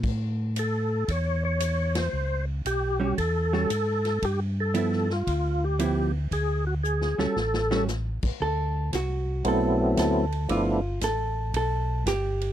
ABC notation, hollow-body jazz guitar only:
X:1
M:4/4
L:1/8
Q:"Swing" 1/4=115
K:Ador
V:1 name="Hollow-body jazz guitar"
z8 | z3 [G,^CF] z [G,CF] z2 | z2 [=F,B,E] z3 [F,B,E] z | z3 [G,^CF] z [G,CF] z2 |
A2 F2 A2 A2 | =F2 A2 A2 G2 |]